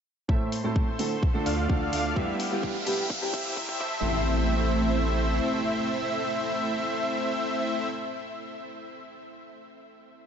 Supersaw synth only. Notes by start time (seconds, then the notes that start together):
0.29 A3 C4 E4 C5 E5
1.46 A3 D4 F4 D5 F5
1.70 A3 D4 F4 D5 F5
1.93 A3 D4 F4 D5 F5
2.16 G3 B3 E4 B4 E5
3.34 G3 C4 E4 C5 E5
3.57 G3 C4 E4 C5 E5
3.81 A3 C4 E4 C5 E5